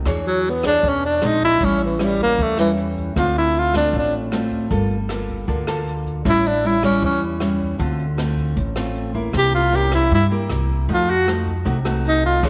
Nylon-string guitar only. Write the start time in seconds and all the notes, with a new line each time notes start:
0.06 E3 D4 G#4 C#5
0.64 D4 G#4 C#5
0.83 B2
1.22 G#3 C4 D4
1.61 A2 G3 C#4 E4
2.00 G3 C#4 E4
2.39 E3
2.58 G3 C#4 E4
3.17 D3 A3 C4 F4
3.74 A3 C4 F4
3.94 A2
4.33 A3 C4 F4
4.71 G3 A#3 F4 A4
5.09 A#3 F4 A4
5.47 D3 A#3 F4 A4
5.67 A#3 F4 A4
6.25 A2 G3 C#4 E4
6.64 G3 C#4 E4
6.83 G3 C#4 E4
7.02 E3
7.40 G3 C#4 E4
7.79 D3 A3 C4 F4
8.17 A3 C4 F4
8.57 A2
8.76 A3 C4 F4
9.14 A#3 E4
9.34 C3
9.72 A#3 C#4 E4
10.12 G3
10.31 A#3 E4 G4
10.89 F3 A3 D#4 F#4
11.27 A3 D#4 F#4
11.65 C3 A3 D#4 F#4
11.85 A3 D#4 F#4
12.42 E3 D4 G#4 C#5